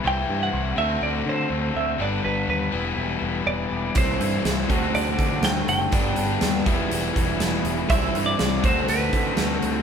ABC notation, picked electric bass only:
X:1
M:4/4
L:1/8
Q:1/4=122
K:Dmix
V:1 name="Picked electric bass" clef=bass
C,, G,, C,, D,, D,, D, D,, D,, | G,,, G,,, _E,, =E,,, E,,, E,,, E,,, E,,, | C,, G,, C,, D,, D,, D, D,, F,,, | G,,, G,,, _E,, =E,,, E,,, E,,, E,,, E,,, |
C,, G,, C,, D,, D,, D, D,, D,, |]